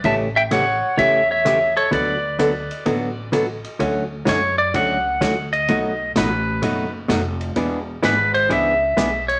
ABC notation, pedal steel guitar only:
X:1
M:4/4
L:1/8
Q:"Swing" 1/4=128
K:D
V:1 name="Pedal steel guitar"
[ea] [eg] [cf]2 [ce] [ce]2 [Ac] | [Bd]6 z2 | z2 c d f3 _e- | _e2 B3 z3 |
z2 B =c e3 ^c |]